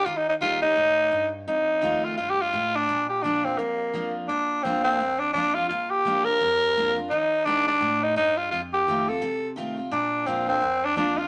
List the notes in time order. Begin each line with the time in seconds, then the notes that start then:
0.06 D#3 F4
0.17 D#4
0.29 D#4
0.41 G3 A#3 D#4 F4 G4
0.62 D#4 G4
0.76 A2
1.12 G2
1.48 F2 D#4
1.81 D#3 A3 C4 F4
2.04 F4
2.18 G2 F4
2.30 G4
2.41 F4
2.53 A2
2.75 D4
2.89 A#2
3.09 G4
3.23 F3 A#3 D4 F4
3.44 C4 D4 F4
3.58 F2 A#3
3.94 F3 A#3 D4 F4
4.28 A#2 D4
4.63 F3 A#3 C4 D4 F4
4.84 C4
5.00 F2
5.19 D4
5.33 F3 A#3 D4 F4
5.55 D4 F4
5.69 A#2 F4
5.90 G4
6.05 F3 A#3 D4 F4
6.25 F4 A#4
6.29 D4
6.41 F2
6.76 F3 A#3 D4 F4
6.96 D4 F4
7.10 D#3 D#4
7.45 G3 A#3 D4 D#4 G4
7.66 D4 D#4 G4
7.81 A2
8.03 D#4
8.16 G2 D#4
8.37 F4
8.51 F2 F4
8.74 G4
8.87 D#3 A3 C4 F4
9.08 C4 F4 A4
9.22 C3
9.56 D#3 A3 C4 F4
9.77 C4 F4
9.91 A#2 D4
10.26 F3 A#3 C4 D4 F4
10.47 C4 D4 F4
10.61 F2
10.84 D4
10.96 F3 A#3 D4 F4
11.18 D4 F4